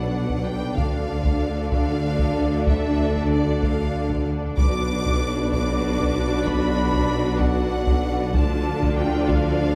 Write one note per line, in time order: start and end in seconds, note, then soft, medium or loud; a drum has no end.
0.00 0.74 B1 soft
0.00 0.79 B1 soft
0.00 0.74 B2 soft
0.00 0.74 F#3 medium
0.00 0.75 B3 medium
0.00 0.74 D4 medium
0.00 0.74 B4 soft
0.00 0.74 D5 soft
0.00 0.46 F#5 medium
0.30 taiko medium
0.46 0.78 G5 medium
0.77 4.41 D2 soft
0.77 4.57 D2 soft
0.77 4.58 D3 soft
0.77 4.41 A3 medium
0.77 4.53 D4 medium
0.77 4.41 D4 medium
0.77 4.53 A4 medium
0.77 4.53 D5 medium
0.77 1.70 F5 medium
0.77 taiko medium
1.25 taiko medium
1.72 2.65 F5 medium
1.72 taiko medium
2.19 taiko medium
2.67 3.30 E5 medium
2.67 taiko medium
3.16 taiko medium
3.32 3.62 D5 medium
3.63 4.26 F5 medium
3.63 taiko medium
4.10 taiko medium
4.57 8.32 B1 medium
4.57 8.38 B1 medium
4.57 8.33 B2 medium
4.57 8.33 F#3 medium
4.57 8.33 D4 medium
4.57 8.33 F#4 medium
4.57 8.32 B4 medium
4.57 8.32 D5 medium
4.57 5.48 D6 loud
4.57 taiko medium
5.05 taiko medium
5.52 6.46 D6 medium
5.52 taiko medium
5.99 taiko medium
6.46 7.41 B5 medium
6.46 taiko medium
6.93 taiko medium
7.40 8.36 F#5 medium
7.40 taiko medium
7.87 taiko medium
8.34 9.75 D2 medium
8.34 9.75 D3 medium
8.34 9.75 F3 medium
8.34 9.75 D4 medium
8.34 9.75 F4 medium
8.34 9.75 A4 medium
8.34 9.75 D5 medium
8.34 9.00 A5 medium
8.34 taiko loud
8.83 taiko medium
8.97 9.29 G5 medium
9.30 9.75 F5 medium
9.30 taiko medium